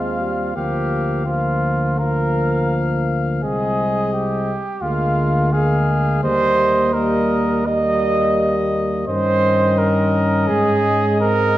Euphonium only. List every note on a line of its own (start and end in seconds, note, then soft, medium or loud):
0.00 0.22 G#3 soft
0.20 0.55 G3 soft
0.55 1.25 F3 soft
1.26 1.98 F3 soft
2.00 3.40 F3 soft
3.43 4.53 G#3 soft
4.83 5.49 G#3 soft
5.54 6.23 G#3 medium
6.23 6.92 G3 medium
6.94 7.65 G3 medium
7.67 9.06 G3 medium
9.08 10.51 D#3 medium
10.49 11.58 G#3 medium